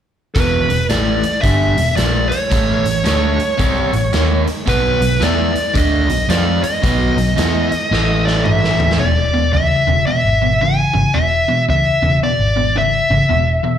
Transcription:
0.35 picked electric bass E1, overdriven electric guitar E2 B2 E3, lead electric guitar B4, kick, closed hi-hat
0.69 picked electric bass E1, overdriven electric guitar E2 B2, closed hi-hat
0.89 picked electric bass A1, overdriven electric guitar A2 E3 A3, lead electric guitar D5, snare, closed hi-hat
1.23 muted picked electric bass stroke, muted overdriven electric guitar stroke, closed hi-hat
1.42 picked electric bass G1, overdriven electric guitar G2 D3 G3, lead electric guitar E5, kick, closed hi-hat
1.77 picked electric bass E1, overdriven electric guitar E2 B2, closed hi-hat
1.96 picked electric bass A#1, overdriven electric guitar A#2 F3 A#3, lead electric guitar D5, snare, closed hi-hat
2.29 lead electric guitar C#5, muted overdriven electric guitar stroke, muted picked electric bass stroke, closed hi-hat
2.50 picked electric bass A1, overdriven electric guitar A2 E3 A3, kick, closed hi-hat
2.84 picked electric bass A1, overdriven electric guitar A2 E3, closed hi-hat
3.04 picked electric bass D2, overdriven electric guitar D3 A3 D4, snare, closed hi-hat
3.38 muted overdriven electric guitar stroke, muted picked electric bass stroke, closed hi-hat
3.58 picked electric bass C2, overdriven electric guitar C3 G3 C4, kick, closed hi-hat
3.93 picked electric bass A1, overdriven electric guitar A2 E3, closed hi-hat
4.13 picked electric bass D#2, overdriven electric guitar D#3 A#3 D#4, snare, closed hi-hat
4.47 muted overdriven electric guitar stroke, muted picked electric bass stroke, closed hi-hat
4.66 picked electric bass B1, overdriven electric guitar B2 F#3 B3, lead electric guitar B4, kick, closed hi-hat
5.01 picked electric bass B1, overdriven electric guitar B2 F#3, closed hi-hat
5.20 picked electric bass E2, overdriven electric guitar E3 B3 E4, lead electric guitar D5, snare, closed hi-hat
5.54 muted overdriven electric guitar stroke, muted picked electric bass stroke, closed hi-hat
5.74 picked electric bass D2, overdriven electric guitar D3 A3 D4, lead electric guitar D#5, kick, closed hi-hat
6.08 picked electric bass B1, overdriven electric guitar B2 F#3, closed hi-hat
6.29 picked electric bass F2, overdriven electric guitar F3 C4 F4, lead electric guitar D5, snare, closed hi-hat
6.62 lead electric guitar D#5, muted overdriven electric guitar stroke, muted picked electric bass stroke, closed hi-hat
6.82 picked electric bass B1, overdriven electric guitar B2 F#3 B3, kick, closed hi-hat
7.17 picked electric bass B1, overdriven electric guitar B2 F#3, closed hi-hat
7.37 picked electric bass E2, overdriven electric guitar E3 B3 E4, snare, closed hi-hat
7.71 muted picked electric bass stroke, muted overdriven electric guitar stroke, closed hi-hat
7.91 picked electric bass A1, overdriven electric guitar A2 E3 A3, snare
8.25 lead electric guitar D5, snare
8.45 lead electric guitar E5, mid tom
8.64 snare
8.80 floor tom
8.91 snare
8.99 picked electric bass E1, overdriven electric guitar E2 B2, lead electric guitar D5
9.34 overdriven electric guitar E2 B2
9.53 picked electric bass C#2, overdriven electric guitar E2 C#3, lead electric guitar E5
9.87 picked electric bass E1, overdriven electric guitar E2 C#3
10.07 overdriven electric guitar E2 B2, lead electric guitar E5
10.25 picked electric bass G#1
10.42 overdriven electric guitar E2 B2
10.61 overdriven electric guitar E2 C#3, lead electric guitar G#5
10.94 picked electric bass G#1, overdriven electric guitar E2 C#3
11.14 picked electric bass E1, overdriven electric guitar E2 B2, lead electric guitar E5
11.48 overdriven electric guitar E2 B2
11.69 picked electric bass C#2, overdriven electric guitar E2 C#3, lead electric guitar E5
12.02 picked electric bass E1, overdriven electric guitar E2 C#3
12.23 overdriven electric guitar E2 B2, lead electric guitar D5
12.39 picked electric bass G#1
12.56 overdriven electric guitar E2 B2
12.76 overdriven electric guitar E2 C#3, lead electric guitar E5
13.10 picked electric bass G#1, overdriven electric guitar E2 C#3
13.29 picked electric bass E1, overdriven electric guitar E2 B2
13.63 overdriven electric guitar E2 B2

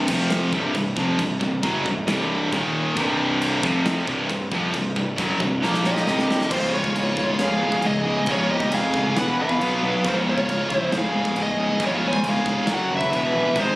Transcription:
0.08 picked electric bass F1, distorted electric guitar F2 C3 F3, kick, crash
0.30 snare, crash
0.52 picked electric bass C1, distorted electric guitar C2 G2 C3, kick
0.75 picked electric bass C1, distorted electric guitar C2 G2, kick, crash
0.97 picked electric bass F1, distorted electric guitar F2 C3 F3, kick
1.19 picked electric bass C1, distorted electric guitar C2 G2, kick, crash
1.41 picked electric bass C1, distorted electric guitar C2 G2, kick
1.63 picked electric bass F#1, distorted electric guitar F#2 C#3 F#3, kick, crash
1.86 picked electric bass C1, distorted electric guitar C2 G2, kick
2.07 picked electric bass C1, distorted electric guitar C2 G2 C3, snare, crash
2.52 picked electric bass D#1, distorted electric guitar D#2 A#2 D#3, kick, crash
2.95 picked electric bass C1, distorted electric guitar C2 G2 C3, kick, crash
3.42 crash
3.63 picked electric bass F1, distorted electric guitar F2 C3 F3, kick
3.86 snare, crash
4.06 picked electric bass C1, distorted electric guitar C2 G2 C3, kick
4.29 picked electric bass C1, distorted electric guitar C2 G2, kick, crash
4.51 picked electric bass F1, distorted electric guitar F2 C3 F3, kick
4.74 picked electric bass C1, distorted electric guitar C2 G2, kick, crash
4.96 picked electric bass C1, distorted electric guitar C2 G2, kick
5.18 picked electric bass F#1, distorted electric guitar F#2 C#3 F#3, kick, crash
5.40 picked electric bass C1, distorted electric guitar C2 G2, kick
5.63 picked electric bass A#1, distorted electric guitar A#2 F3 A#3, snare
5.74 snare
5.84 lead electric guitar G4 D#5, snare
5.96 snare
6.07 picked electric bass C1, distorted electric guitar C2 G2 C3, snare
6.19 snare
6.31 snare
6.41 snare
6.50 picked electric bass C#1, distorted electric guitar C#2 G#2 C#3, lead electric guitar C5, kick, crash
6.55 lead electric guitar F4
6.74 distorted electric guitar C#2 G#2, lead electric guitar F4 C#5
6.84 distorted electric guitar C#2 G#2, kick
6.96 picked electric bass C#1, distorted electric guitar C#2 G#2, crash
7.17 picked electric bass C#1, distorted electric guitar C#2 G#2, kick
7.30 distorted electric guitar C#2 G#2
7.39 picked electric bass C#1, distorted electric guitar C#2 G#2 C#3, lead electric guitar G#4, snare, crash
7.43 lead electric guitar F5
7.63 picked electric bass C#1, distorted electric guitar C#2 G#2
7.72 distorted electric guitar C#2 G#2, kick
7.82 picked electric bass C#1, distorted electric guitar C#2 G#2, crash
7.86 lead electric guitar G#4 D#5
8.05 distorted electric guitar C#2 G#2 C#3
8.18 distorted electric guitar C#2 G#2
8.26 picked electric bass C#1, distorted electric guitar C#2 G#2 C#3, lead electric guitar F4, kick, crash
8.31 lead electric guitar C#5
8.50 distorted electric guitar C#2 G#2, lead electric guitar G4 D#5
8.60 distorted electric guitar C#2 G#2, kick
8.72 picked electric bass F1, distorted electric guitar C#2 G#2, lead electric guitar G#4 F5, crash
8.93 distorted electric guitar C#2 G#2, kick
9.04 distorted electric guitar C#2 G#2
9.16 picked electric bass E1, distorted electric guitar E2 B2 E3, lead electric guitar F#5, snare, crash
9.20 lead electric guitar B4
9.39 picked electric bass E1, distorted electric guitar E2 B2, lead electric guitar B4 F5
9.49 distorted electric guitar E2 B2, kick
9.59 picked electric bass B1, distorted electric guitar B2 F#3 B3, crash
9.83 picked electric bass B1, distorted electric guitar B2 F#3 B3
9.94 distorted electric guitar B2 F#3
10.04 picked electric bass C#1, distorted electric guitar C#2 G#2 C#3, lead electric guitar F4, kick, crash
10.09 lead electric guitar C5
10.27 distorted electric guitar C#2 G#2, lead electric guitar C#5
10.31 lead electric guitar F4
10.38 distorted electric guitar C#2 G#2, kick
10.48 picked electric bass C#1, distorted electric guitar C#2 G#2, crash
10.70 picked electric bass C#1, distorted electric guitar C#2 G#2, lead electric guitar E4, kick
10.77 lead electric guitar C5
10.81 distorted electric guitar C#2 G#2
10.91 picked electric bass C#1, distorted electric guitar C#2 G#2 C#3, snare, crash
10.98 lead electric guitar G#4 F5
11.13 picked electric bass C#1, distorted electric guitar C#2 G#2
11.24 distorted electric guitar C#2 G#2, kick
11.35 picked electric bass C#1, distorted electric guitar C#2 G#2, crash
11.42 lead electric guitar G#4 D#5
11.56 distorted electric guitar C#2 G#2 C#3
11.70 distorted electric guitar C#2 G#2
11.80 picked electric bass C#1, distorted electric guitar C#2 G#2 C#3, kick, crash
11.86 lead electric guitar F4 C#5
12.03 distorted electric guitar C#2 G#2
12.08 lead electric guitar C5 G#5
12.12 distorted electric guitar C#2 G#2, kick
12.24 picked electric bass G1, distorted electric guitar C#2 G#2, crash
12.29 lead electric guitar G#4 F5
12.45 distorted electric guitar C#2 G#2, kick
12.57 distorted electric guitar C#2 G#2
12.67 picked electric bass F#1, distorted electric guitar F#2 C#3 F#3, snare, crash
12.74 lead electric guitar C#5 F#5
12.90 picked electric bass F#1, distorted electric guitar F#2 C#3
12.95 lead electric guitar B4 E5
13.01 distorted electric guitar F#2 C#3, kick
13.12 picked electric bass E1, distorted electric guitar E2 B2 E3, crash
13.34 picked electric bass A#1, distorted electric guitar E2 B2 E3
13.44 distorted electric guitar E2 B2
13.55 picked electric bass G#1, distorted electric guitar G#2 D#3 G#3, kick, crash
13.60 lead electric guitar D#4 C5

